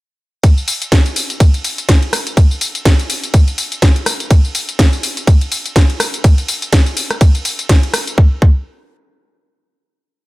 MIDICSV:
0, 0, Header, 1, 2, 480
1, 0, Start_track
1, 0, Tempo, 483871
1, 433, Time_signature, 4, 2, 24, 8
1, 10180, End_track
2, 0, Start_track
2, 0, Title_t, "Drums"
2, 432, Note_on_c, 9, 36, 118
2, 432, Note_on_c, 9, 42, 73
2, 432, Note_on_c, 9, 51, 64
2, 433, Note_on_c, 9, 54, 44
2, 531, Note_off_c, 9, 36, 0
2, 531, Note_off_c, 9, 42, 0
2, 531, Note_off_c, 9, 51, 0
2, 532, Note_off_c, 9, 54, 0
2, 571, Note_on_c, 9, 54, 30
2, 670, Note_off_c, 9, 54, 0
2, 671, Note_on_c, 9, 46, 106
2, 673, Note_on_c, 9, 54, 78
2, 770, Note_off_c, 9, 46, 0
2, 772, Note_off_c, 9, 54, 0
2, 810, Note_on_c, 9, 42, 57
2, 812, Note_on_c, 9, 54, 35
2, 909, Note_off_c, 9, 42, 0
2, 911, Note_off_c, 9, 54, 0
2, 912, Note_on_c, 9, 36, 118
2, 912, Note_on_c, 9, 42, 69
2, 912, Note_on_c, 9, 51, 64
2, 914, Note_on_c, 9, 54, 47
2, 916, Note_on_c, 9, 38, 126
2, 1011, Note_off_c, 9, 36, 0
2, 1011, Note_off_c, 9, 42, 0
2, 1011, Note_off_c, 9, 51, 0
2, 1013, Note_off_c, 9, 54, 0
2, 1015, Note_off_c, 9, 38, 0
2, 1050, Note_on_c, 9, 42, 38
2, 1051, Note_on_c, 9, 54, 32
2, 1149, Note_off_c, 9, 42, 0
2, 1150, Note_off_c, 9, 54, 0
2, 1152, Note_on_c, 9, 46, 113
2, 1153, Note_on_c, 9, 54, 82
2, 1251, Note_off_c, 9, 46, 0
2, 1253, Note_off_c, 9, 54, 0
2, 1290, Note_on_c, 9, 42, 58
2, 1292, Note_on_c, 9, 54, 34
2, 1389, Note_off_c, 9, 42, 0
2, 1391, Note_off_c, 9, 54, 0
2, 1392, Note_on_c, 9, 36, 120
2, 1392, Note_on_c, 9, 42, 70
2, 1392, Note_on_c, 9, 51, 66
2, 1393, Note_on_c, 9, 54, 46
2, 1491, Note_off_c, 9, 36, 0
2, 1491, Note_off_c, 9, 42, 0
2, 1491, Note_off_c, 9, 51, 0
2, 1493, Note_off_c, 9, 54, 0
2, 1530, Note_on_c, 9, 42, 39
2, 1531, Note_on_c, 9, 54, 33
2, 1629, Note_off_c, 9, 42, 0
2, 1631, Note_off_c, 9, 54, 0
2, 1631, Note_on_c, 9, 46, 105
2, 1633, Note_on_c, 9, 54, 79
2, 1730, Note_off_c, 9, 46, 0
2, 1732, Note_off_c, 9, 54, 0
2, 1769, Note_on_c, 9, 42, 55
2, 1771, Note_on_c, 9, 54, 35
2, 1868, Note_off_c, 9, 42, 0
2, 1870, Note_off_c, 9, 54, 0
2, 1871, Note_on_c, 9, 42, 69
2, 1871, Note_on_c, 9, 51, 65
2, 1872, Note_on_c, 9, 36, 122
2, 1873, Note_on_c, 9, 54, 47
2, 1875, Note_on_c, 9, 38, 122
2, 1970, Note_off_c, 9, 42, 0
2, 1970, Note_off_c, 9, 51, 0
2, 1971, Note_off_c, 9, 36, 0
2, 1972, Note_off_c, 9, 54, 0
2, 1974, Note_off_c, 9, 38, 0
2, 2009, Note_on_c, 9, 42, 39
2, 2108, Note_off_c, 9, 42, 0
2, 2112, Note_on_c, 9, 37, 78
2, 2112, Note_on_c, 9, 46, 109
2, 2113, Note_on_c, 9, 54, 78
2, 2211, Note_off_c, 9, 37, 0
2, 2211, Note_off_c, 9, 46, 0
2, 2213, Note_off_c, 9, 54, 0
2, 2249, Note_on_c, 9, 42, 57
2, 2251, Note_on_c, 9, 54, 33
2, 2348, Note_off_c, 9, 42, 0
2, 2350, Note_off_c, 9, 54, 0
2, 2352, Note_on_c, 9, 36, 126
2, 2352, Note_on_c, 9, 42, 70
2, 2352, Note_on_c, 9, 51, 64
2, 2353, Note_on_c, 9, 54, 46
2, 2451, Note_off_c, 9, 36, 0
2, 2451, Note_off_c, 9, 42, 0
2, 2451, Note_off_c, 9, 51, 0
2, 2453, Note_off_c, 9, 54, 0
2, 2491, Note_on_c, 9, 54, 31
2, 2590, Note_off_c, 9, 54, 0
2, 2591, Note_on_c, 9, 46, 111
2, 2592, Note_on_c, 9, 54, 80
2, 2690, Note_off_c, 9, 46, 0
2, 2691, Note_off_c, 9, 54, 0
2, 2728, Note_on_c, 9, 42, 55
2, 2730, Note_on_c, 9, 54, 35
2, 2828, Note_off_c, 9, 42, 0
2, 2829, Note_off_c, 9, 54, 0
2, 2832, Note_on_c, 9, 36, 118
2, 2832, Note_on_c, 9, 42, 71
2, 2832, Note_on_c, 9, 51, 69
2, 2833, Note_on_c, 9, 54, 44
2, 2836, Note_on_c, 9, 38, 127
2, 2931, Note_off_c, 9, 36, 0
2, 2931, Note_off_c, 9, 42, 0
2, 2931, Note_off_c, 9, 51, 0
2, 2933, Note_off_c, 9, 54, 0
2, 2935, Note_off_c, 9, 38, 0
2, 2970, Note_on_c, 9, 42, 40
2, 2972, Note_on_c, 9, 54, 30
2, 3070, Note_off_c, 9, 42, 0
2, 3071, Note_off_c, 9, 54, 0
2, 3072, Note_on_c, 9, 46, 115
2, 3074, Note_on_c, 9, 54, 79
2, 3171, Note_off_c, 9, 46, 0
2, 3173, Note_off_c, 9, 54, 0
2, 3210, Note_on_c, 9, 42, 55
2, 3211, Note_on_c, 9, 54, 33
2, 3309, Note_off_c, 9, 42, 0
2, 3311, Note_off_c, 9, 54, 0
2, 3311, Note_on_c, 9, 42, 69
2, 3311, Note_on_c, 9, 51, 69
2, 3312, Note_on_c, 9, 36, 127
2, 3312, Note_on_c, 9, 54, 45
2, 3410, Note_off_c, 9, 42, 0
2, 3410, Note_off_c, 9, 51, 0
2, 3411, Note_off_c, 9, 36, 0
2, 3411, Note_off_c, 9, 54, 0
2, 3449, Note_on_c, 9, 42, 37
2, 3451, Note_on_c, 9, 54, 32
2, 3548, Note_off_c, 9, 42, 0
2, 3550, Note_off_c, 9, 54, 0
2, 3551, Note_on_c, 9, 46, 110
2, 3553, Note_on_c, 9, 54, 78
2, 3650, Note_off_c, 9, 46, 0
2, 3652, Note_off_c, 9, 54, 0
2, 3689, Note_on_c, 9, 42, 53
2, 3691, Note_on_c, 9, 54, 34
2, 3788, Note_off_c, 9, 42, 0
2, 3790, Note_off_c, 9, 54, 0
2, 3791, Note_on_c, 9, 42, 64
2, 3791, Note_on_c, 9, 51, 61
2, 3792, Note_on_c, 9, 36, 127
2, 3793, Note_on_c, 9, 54, 43
2, 3795, Note_on_c, 9, 38, 126
2, 3890, Note_off_c, 9, 42, 0
2, 3890, Note_off_c, 9, 51, 0
2, 3891, Note_off_c, 9, 36, 0
2, 3892, Note_off_c, 9, 54, 0
2, 3894, Note_off_c, 9, 38, 0
2, 3929, Note_on_c, 9, 42, 39
2, 4028, Note_off_c, 9, 42, 0
2, 4030, Note_on_c, 9, 37, 81
2, 4030, Note_on_c, 9, 46, 114
2, 4031, Note_on_c, 9, 54, 78
2, 4129, Note_off_c, 9, 37, 0
2, 4129, Note_off_c, 9, 46, 0
2, 4131, Note_off_c, 9, 54, 0
2, 4169, Note_on_c, 9, 42, 55
2, 4171, Note_on_c, 9, 54, 32
2, 4268, Note_off_c, 9, 42, 0
2, 4270, Note_off_c, 9, 54, 0
2, 4271, Note_on_c, 9, 42, 67
2, 4271, Note_on_c, 9, 51, 66
2, 4272, Note_on_c, 9, 36, 127
2, 4273, Note_on_c, 9, 54, 44
2, 4370, Note_off_c, 9, 42, 0
2, 4370, Note_off_c, 9, 51, 0
2, 4371, Note_off_c, 9, 36, 0
2, 4372, Note_off_c, 9, 54, 0
2, 4411, Note_on_c, 9, 54, 31
2, 4510, Note_off_c, 9, 54, 0
2, 4512, Note_on_c, 9, 46, 113
2, 4513, Note_on_c, 9, 54, 77
2, 4611, Note_off_c, 9, 46, 0
2, 4613, Note_off_c, 9, 54, 0
2, 4650, Note_on_c, 9, 42, 56
2, 4651, Note_on_c, 9, 54, 32
2, 4749, Note_off_c, 9, 42, 0
2, 4751, Note_off_c, 9, 54, 0
2, 4752, Note_on_c, 9, 36, 125
2, 4753, Note_on_c, 9, 42, 66
2, 4753, Note_on_c, 9, 51, 72
2, 4755, Note_on_c, 9, 54, 44
2, 4757, Note_on_c, 9, 38, 122
2, 4851, Note_off_c, 9, 36, 0
2, 4852, Note_off_c, 9, 42, 0
2, 4852, Note_off_c, 9, 51, 0
2, 4854, Note_off_c, 9, 54, 0
2, 4856, Note_off_c, 9, 38, 0
2, 4891, Note_on_c, 9, 42, 36
2, 4892, Note_on_c, 9, 54, 30
2, 4990, Note_off_c, 9, 42, 0
2, 4991, Note_off_c, 9, 54, 0
2, 4993, Note_on_c, 9, 46, 118
2, 4994, Note_on_c, 9, 54, 78
2, 5092, Note_off_c, 9, 46, 0
2, 5093, Note_off_c, 9, 54, 0
2, 5130, Note_on_c, 9, 42, 51
2, 5132, Note_on_c, 9, 54, 33
2, 5229, Note_off_c, 9, 42, 0
2, 5231, Note_off_c, 9, 54, 0
2, 5232, Note_on_c, 9, 36, 127
2, 5232, Note_on_c, 9, 42, 66
2, 5232, Note_on_c, 9, 51, 65
2, 5234, Note_on_c, 9, 54, 43
2, 5331, Note_off_c, 9, 36, 0
2, 5332, Note_off_c, 9, 42, 0
2, 5332, Note_off_c, 9, 51, 0
2, 5333, Note_off_c, 9, 54, 0
2, 5370, Note_on_c, 9, 42, 38
2, 5372, Note_on_c, 9, 54, 31
2, 5470, Note_off_c, 9, 42, 0
2, 5471, Note_off_c, 9, 54, 0
2, 5472, Note_on_c, 9, 46, 111
2, 5474, Note_on_c, 9, 54, 80
2, 5571, Note_off_c, 9, 46, 0
2, 5573, Note_off_c, 9, 54, 0
2, 5610, Note_on_c, 9, 42, 52
2, 5612, Note_on_c, 9, 54, 34
2, 5709, Note_off_c, 9, 42, 0
2, 5711, Note_off_c, 9, 54, 0
2, 5712, Note_on_c, 9, 36, 127
2, 5712, Note_on_c, 9, 42, 65
2, 5712, Note_on_c, 9, 51, 66
2, 5714, Note_on_c, 9, 54, 43
2, 5716, Note_on_c, 9, 38, 122
2, 5811, Note_off_c, 9, 36, 0
2, 5811, Note_off_c, 9, 42, 0
2, 5811, Note_off_c, 9, 51, 0
2, 5813, Note_off_c, 9, 54, 0
2, 5815, Note_off_c, 9, 38, 0
2, 5850, Note_on_c, 9, 42, 37
2, 5949, Note_off_c, 9, 42, 0
2, 5952, Note_on_c, 9, 37, 87
2, 5952, Note_on_c, 9, 46, 109
2, 5953, Note_on_c, 9, 54, 76
2, 6051, Note_off_c, 9, 37, 0
2, 6051, Note_off_c, 9, 46, 0
2, 6053, Note_off_c, 9, 54, 0
2, 6090, Note_on_c, 9, 42, 53
2, 6092, Note_on_c, 9, 54, 33
2, 6189, Note_off_c, 9, 42, 0
2, 6191, Note_off_c, 9, 54, 0
2, 6192, Note_on_c, 9, 42, 62
2, 6192, Note_on_c, 9, 51, 72
2, 6193, Note_on_c, 9, 36, 122
2, 6193, Note_on_c, 9, 54, 44
2, 6291, Note_off_c, 9, 42, 0
2, 6291, Note_off_c, 9, 51, 0
2, 6292, Note_off_c, 9, 36, 0
2, 6292, Note_off_c, 9, 54, 0
2, 6330, Note_on_c, 9, 42, 36
2, 6332, Note_on_c, 9, 54, 31
2, 6429, Note_off_c, 9, 42, 0
2, 6431, Note_off_c, 9, 54, 0
2, 6433, Note_on_c, 9, 46, 112
2, 6434, Note_on_c, 9, 54, 79
2, 6532, Note_off_c, 9, 46, 0
2, 6533, Note_off_c, 9, 54, 0
2, 6570, Note_on_c, 9, 42, 54
2, 6571, Note_on_c, 9, 54, 34
2, 6669, Note_off_c, 9, 42, 0
2, 6670, Note_off_c, 9, 54, 0
2, 6671, Note_on_c, 9, 42, 63
2, 6671, Note_on_c, 9, 51, 73
2, 6673, Note_on_c, 9, 36, 123
2, 6673, Note_on_c, 9, 54, 44
2, 6675, Note_on_c, 9, 38, 123
2, 6771, Note_off_c, 9, 42, 0
2, 6771, Note_off_c, 9, 51, 0
2, 6772, Note_off_c, 9, 36, 0
2, 6772, Note_off_c, 9, 54, 0
2, 6774, Note_off_c, 9, 38, 0
2, 6809, Note_on_c, 9, 42, 35
2, 6810, Note_on_c, 9, 54, 30
2, 6908, Note_off_c, 9, 42, 0
2, 6910, Note_off_c, 9, 54, 0
2, 6911, Note_on_c, 9, 46, 117
2, 6913, Note_on_c, 9, 54, 77
2, 7010, Note_off_c, 9, 46, 0
2, 7012, Note_off_c, 9, 54, 0
2, 7049, Note_on_c, 9, 37, 68
2, 7049, Note_on_c, 9, 42, 52
2, 7050, Note_on_c, 9, 54, 33
2, 7148, Note_off_c, 9, 37, 0
2, 7148, Note_off_c, 9, 42, 0
2, 7149, Note_off_c, 9, 54, 0
2, 7152, Note_on_c, 9, 42, 68
2, 7152, Note_on_c, 9, 51, 71
2, 7153, Note_on_c, 9, 36, 127
2, 7153, Note_on_c, 9, 54, 45
2, 7251, Note_off_c, 9, 42, 0
2, 7251, Note_off_c, 9, 51, 0
2, 7252, Note_off_c, 9, 36, 0
2, 7252, Note_off_c, 9, 54, 0
2, 7290, Note_on_c, 9, 42, 37
2, 7291, Note_on_c, 9, 54, 31
2, 7389, Note_off_c, 9, 42, 0
2, 7390, Note_off_c, 9, 54, 0
2, 7391, Note_on_c, 9, 46, 116
2, 7393, Note_on_c, 9, 54, 82
2, 7490, Note_off_c, 9, 46, 0
2, 7492, Note_off_c, 9, 54, 0
2, 7529, Note_on_c, 9, 42, 52
2, 7531, Note_on_c, 9, 54, 35
2, 7628, Note_off_c, 9, 42, 0
2, 7630, Note_off_c, 9, 54, 0
2, 7632, Note_on_c, 9, 42, 65
2, 7632, Note_on_c, 9, 51, 70
2, 7633, Note_on_c, 9, 36, 123
2, 7633, Note_on_c, 9, 54, 44
2, 7636, Note_on_c, 9, 38, 116
2, 7731, Note_off_c, 9, 42, 0
2, 7731, Note_off_c, 9, 51, 0
2, 7732, Note_off_c, 9, 36, 0
2, 7733, Note_off_c, 9, 54, 0
2, 7735, Note_off_c, 9, 38, 0
2, 7771, Note_on_c, 9, 42, 36
2, 7870, Note_off_c, 9, 42, 0
2, 7872, Note_on_c, 9, 37, 83
2, 7872, Note_on_c, 9, 46, 116
2, 7874, Note_on_c, 9, 54, 79
2, 7971, Note_off_c, 9, 37, 0
2, 7971, Note_off_c, 9, 46, 0
2, 7973, Note_off_c, 9, 54, 0
2, 8010, Note_on_c, 9, 42, 50
2, 8011, Note_on_c, 9, 54, 32
2, 8109, Note_off_c, 9, 42, 0
2, 8111, Note_off_c, 9, 54, 0
2, 8113, Note_on_c, 9, 36, 114
2, 8212, Note_off_c, 9, 36, 0
2, 8352, Note_on_c, 9, 36, 111
2, 8452, Note_off_c, 9, 36, 0
2, 10180, End_track
0, 0, End_of_file